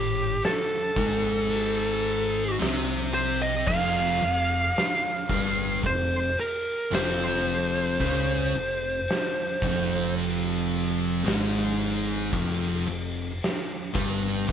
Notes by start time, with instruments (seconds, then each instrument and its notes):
Already playing: picked electric bass G#1, distorted electric guitar A2, lead electric guitar G4
0.42 lead electric guitar A4, snare, open hi-hat
0.96 picked electric bass G#1, distorted electric guitar G#2 G#3, kick, open hi-hat
1.50 open hi-hat
2.06 open hi-hat
2.60 picked electric bass C2, distorted electric guitar C3 C4, snare, open hi-hat
3.13 lead electric guitar C5, open hi-hat
3.42 lead electric guitar D#5
3.67 picked electric bass F1, distorted electric guitar F2 F3, lead electric guitar F5, kick, crash
4.21 picked electric bass F1, distorted electric guitar F2, open hi-hat
4.75 snare, open hi-hat
5.29 picked electric bass G1, distorted electric guitar G2 G3, kick, open hi-hat
5.83 picked electric bass F1, distorted electric guitar F2, lead electric guitar C5, kick, open hi-hat
6.38 lead electric guitar A#4, open hi-hat
6.92 picked electric bass F1, distorted electric guitar F2 F3, lead electric guitar C5, snare, open hi-hat
7.46 open hi-hat
8.00 picked electric bass C#2, distorted electric guitar C#3 C#4, kick, open hi-hat
8.53 picked electric bass F1, distorted electric guitar F2, open hi-hat
9.08 snare, open hi-hat
9.61 picked electric bass F1, distorted electric guitar F2 F3, kick, open hi-hat
10.16 open hi-hat
10.71 open hi-hat
11.25 picked electric bass G#1, distorted electric guitar G#2 G#3, snare, open hi-hat
11.80 open hi-hat
12.33 picked electric bass F1, distorted electric guitar F2 F3, kick, open hi-hat
12.86 picked electric bass F1, distorted electric guitar F2, open hi-hat
13.41 snare, open hi-hat
13.94 picked electric bass G1, distorted electric guitar G2 G3, kick, open hi-hat
14.49 picked electric bass F1, distorted electric guitar F2, kick